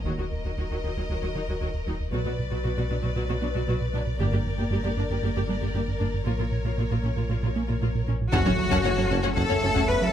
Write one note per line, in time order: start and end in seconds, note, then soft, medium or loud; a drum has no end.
0.05 2.13 D#1 soft
0.05 0.17 D#2 soft
0.05 0.13 D#2 medium
0.05 0.10 D#3 soft
0.05 0.12 F#3 soft
0.05 0.11 F#4 soft
0.05 2.08 A#4 soft
0.05 2.08 D#5 soft
0.18 0.26 D#2 soft
0.18 0.24 D#3 soft
0.18 0.24 F#3 soft
0.18 0.24 F#4 soft
0.32 0.39 D#2 soft
0.45 0.52 D#2 soft
0.45 0.50 D#3 soft
0.45 0.50 F#3 soft
0.45 0.50 F#4 soft
0.57 0.65 D#2 medium
0.57 0.63 D#3 soft
0.57 0.64 F#3 soft
0.57 0.63 F#4 soft
0.70 0.78 D#2 soft
0.70 0.76 D#3 soft
0.70 0.77 F#3 soft
0.70 0.77 F#4 soft
0.83 0.91 D#2 soft
0.83 0.88 D#3 soft
0.83 0.90 F#3 soft
0.83 0.90 D#4 soft
0.96 1.04 D#2 medium
0.96 1.01 D#3 soft
0.96 1.03 F#3 soft
0.96 1.03 F#4 soft
1.09 1.17 D#2 medium
1.09 1.14 D#3 soft
1.09 1.15 F#3 soft
1.09 1.15 F#4 soft
1.22 1.30 D#2 medium
1.22 1.27 D#3 soft
1.22 1.28 F#3 soft
1.22 1.28 F#4 soft
1.35 1.40 D#3 soft
1.35 1.43 D#3 soft
1.35 1.41 F#3 soft
1.35 1.41 D#4 soft
1.48 1.56 D#2 soft
1.48 1.53 D#3 soft
1.48 1.54 F#3 soft
1.48 1.54 F#4 soft
1.60 1.69 D#2 medium
1.60 1.66 D#3 soft
1.60 1.66 F#3 medium
1.60 1.66 F#4 medium
1.74 1.82 D#2 soft
1.86 1.94 D#2 soft
1.86 1.92 D#3 soft
1.86 1.93 F#3 soft
1.86 1.93 D#4 soft
2.00 2.08 D#2 soft
2.11 2.24 B1 medium
2.11 4.20 B1 medium
2.11 2.18 B2 soft
2.11 2.21 B2 medium
2.11 2.18 F#3 medium
2.11 2.18 F#4 medium
2.11 4.16 B4 soft
2.11 6.23 D5 soft
2.25 2.30 B2 soft
2.25 2.33 B2 soft
2.25 2.30 F#3 soft
2.25 2.30 F#4 soft
2.39 2.47 B2 medium
2.52 2.57 B2 soft
2.52 2.59 B2 soft
2.52 2.57 F#3 soft
2.52 2.57 F#4 soft
2.64 2.70 B2 medium
2.64 2.72 B2 medium
2.64 2.70 F#3 medium
2.64 2.69 F#4 medium
2.77 2.85 B2 medium
2.77 2.83 B2 soft
2.77 2.82 F#3 soft
2.77 2.83 F#4 soft
2.90 2.96 B2 soft
2.90 2.98 B2 medium
2.90 2.95 F#3 soft
2.90 2.95 D4 soft
3.02 3.11 B2 medium
3.02 3.09 B2 soft
3.02 3.07 F#3 soft
3.02 3.08 F#4 soft
3.16 3.24 B2 medium
3.16 3.22 B2 medium
3.16 3.21 F#3 medium
3.16 3.21 F#4 medium
3.29 3.34 B2 soft
3.29 3.37 B2 medium
3.29 3.35 F#3 soft
3.29 3.34 F#4 soft
3.41 3.47 B2 soft
3.41 3.47 F#3 soft
3.41 3.50 B3 medium
3.41 3.47 D4 soft
3.55 3.60 B2 soft
3.55 3.63 B2 soft
3.55 3.60 F#3 soft
3.55 3.60 F#4 soft
3.68 3.73 B2 medium
3.68 3.76 B2 medium
3.68 3.74 F#3 medium
3.68 3.74 F#4 medium
3.81 3.89 B2 soft
3.93 3.98 B2 soft
3.93 4.02 B2 medium
3.93 4.00 F#3 soft
3.93 3.99 D4 medium
4.07 4.14 B2 soft
4.19 6.27 G1 medium
4.19 4.31 G1 medium
4.19 4.24 G2 medium
4.19 4.27 G2 medium
4.19 4.25 A#3 medium
4.19 4.25 G4 medium
4.19 8.09 A#4 medium
4.32 4.37 G2 soft
4.32 4.40 G2 soft
4.32 4.38 A#3 soft
4.32 4.38 G4 soft
4.46 4.53 G2 medium
4.58 4.66 G2 medium
4.58 4.64 G2 soft
4.58 4.64 A#3 soft
4.58 4.64 G4 soft
4.70 4.76 G2 medium
4.70 4.79 G2 medium
4.70 4.77 A#3 medium
4.70 4.77 G4 medium
4.84 4.89 G2 soft
4.84 4.92 G2 medium
4.84 4.90 A#3 soft
4.84 4.90 G4 soft
4.97 5.02 G2 soft
4.97 5.05 G2 medium
4.97 5.02 A#3 soft
4.97 5.02 D4 soft
5.10 5.15 G2 soft
5.10 5.18 G2 medium
5.10 5.16 A#3 soft
5.10 5.16 G4 soft
5.22 5.27 G2 medium
5.22 5.31 G2 medium
5.22 5.28 A#3 medium
5.22 5.28 G4 medium
5.35 5.40 G2 soft
5.35 5.44 G2 medium
5.35 5.41 A#3 soft
5.35 5.41 G4 soft
5.48 5.53 G2 soft
5.48 5.57 G3 medium
5.48 5.54 A#3 soft
5.48 5.54 D4 soft
5.61 5.66 G2 soft
5.61 5.70 G2 soft
5.61 5.67 A#3 soft
5.61 5.67 G4 soft
5.73 5.79 G2 medium
5.73 5.82 G2 medium
5.73 5.80 A#3 medium
5.73 5.80 G4 medium
5.88 5.96 G2 medium
6.00 6.05 G2 soft
6.00 6.08 G2 medium
6.00 6.05 A#3 soft
6.00 6.05 D4 soft
6.14 6.22 G2 soft
6.25 6.38 A#1 soft
6.25 8.32 A#1 soft
6.25 6.31 A#2 soft
6.25 6.34 A#2 medium
6.25 6.31 A#3 medium
6.25 6.31 F4 soft
6.25 8.09 C#5 soft
6.38 6.44 A#2 soft
6.38 6.47 A#2 soft
6.38 6.45 A#3 soft
6.38 6.44 F4 soft
6.52 6.60 A#2 soft
6.64 6.70 A#2 soft
6.64 6.72 A#2 medium
6.64 6.70 A#3 soft
6.64 6.70 F4 soft
6.77 6.82 A#2 medium
6.77 6.86 A#2 medium
6.77 6.83 A#3 medium
6.77 6.84 F4 soft
6.91 6.99 A#2 medium
6.91 6.96 A#2 soft
6.91 6.96 A#3 soft
6.91 6.97 F4 soft
7.03 7.08 A#2 soft
7.03 7.12 A#2 soft
7.03 7.09 A#3 soft
7.03 7.09 C#4 soft
7.16 7.22 A#2 soft
7.16 7.24 A#2 medium
7.16 7.22 A#3 soft
7.16 7.22 F4 soft
7.29 7.35 A#2 soft
7.29 7.37 A#2 medium
7.29 7.35 A#3 soft
7.29 7.35 F4 soft
7.42 7.47 A#2 soft
7.42 7.51 A#2 medium
7.42 7.49 A#3 soft
7.42 7.49 F4 soft
7.54 7.60 A#2 soft
7.54 7.61 A#3 soft
7.54 7.64 A#3 medium
7.54 7.61 C#4 soft
7.68 7.73 A#2 soft
7.68 7.77 A#2 soft
7.68 7.74 A#3 soft
7.68 7.74 F4 soft
7.81 7.86 A#2 soft
7.81 7.90 A#2 medium
7.81 7.87 A#3 medium
7.81 7.87 F4 soft
7.95 8.03 A#2 medium
8.07 8.12 A#2 soft
8.07 8.16 A#2 medium
8.07 8.12 A#3 soft
8.07 8.13 C#4 soft
8.21 8.29 A#2 soft
8.32 10.13 F#1 medium
8.32 8.39 F#1 medium
8.32 8.38 F#2 loud
8.32 8.41 F#2 loud
8.32 10.13 C#3 medium
8.32 9.33 F#3 medium
8.32 10.13 A3 medium
8.32 8.38 C#4 medium
8.32 9.32 F#4 loud
8.32 8.38 F#5 medium
8.32 8.38 A5 medium
8.32 taiko loud
8.32 impact medium
8.46 8.51 F#2 medium
8.46 8.54 F#3 medium
8.46 8.52 C#4 medium
8.46 8.51 C#5 medium
8.46 8.51 F#5 medium
8.46 taiko low-mid medium
8.59 8.67 F#3 medium
8.71 8.77 F#2 loud
8.71 8.80 F#2 loud
8.71 8.77 C#4 medium
8.71 8.77 F#5 medium
8.71 8.76 A5 medium
8.71 taiko medium
8.83 8.91 F#1 medium
8.83 8.90 F#2 medium
8.83 8.93 F#2 medium
8.83 8.90 C#4 medium
8.83 8.89 C#5 medium
8.83 8.89 F#5 medium
8.97 9.02 F#2 medium
8.97 9.06 F#3 medium
8.97 9.03 C#4 medium
8.97 9.02 A4 medium
8.97 9.03 C#5 medium
9.10 9.16 F#1 loud
9.10 9.16 F#2 medium
9.10 9.19 F#2 loud
9.10 9.16 C#4 medium
9.10 9.16 F#5 medium
9.10 9.16 A5 loud
9.22 9.29 F#2 medium
9.22 9.32 F#2 medium
9.22 9.29 C#4 medium
9.22 9.28 C#5 medium
9.22 9.29 F#5 medium
9.36 9.42 F#1 medium
9.36 9.41 F#2 medium
9.36 9.45 F#2 loud
9.36 9.88 A3 medium
9.36 9.41 C#4 medium
9.36 9.87 A4 loud
9.36 9.41 F#5 medium
9.36 9.41 A5 medium
9.36 taiko medium
9.48 9.55 F#2 medium
9.48 9.58 F#2 medium
9.48 9.55 C#4 medium
9.48 9.54 C#5 medium
9.48 9.54 F#5 medium
9.62 9.68 F#1 medium
9.62 9.68 F#2 medium
9.62 9.71 F#2 medium
9.62 9.68 C#4 medium
9.62 9.67 A4 medium
9.62 9.68 C#5 medium
9.74 9.81 F#2 medium
9.74 9.84 F#2 loud
9.74 9.80 C#4 medium
9.74 9.79 F#5 medium
9.74 9.81 A5 medium
9.74 taiko medium
9.88 9.97 F#2 medium
9.88 10.05 B3 medium
9.88 10.06 B4 loud
10.02 10.09 F#3 medium
10.02 10.13 A3 medium
10.02 10.13 A4 loud